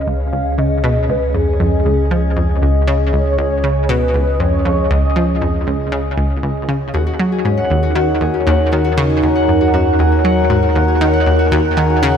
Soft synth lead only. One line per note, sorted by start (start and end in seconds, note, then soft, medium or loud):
0.08 0.60 F5 loud
0.58 0.83 D#5 loud
0.84 1.11 D#5 loud
1.10 1.34 B4 loud
1.35 2.33 G#4 medium
3.13 3.37 C#5 medium
3.38 3.91 C#5 loud
3.89 4.39 B4 medium
4.40 4.92 C#5 loud
4.91 5.41 D#5 loud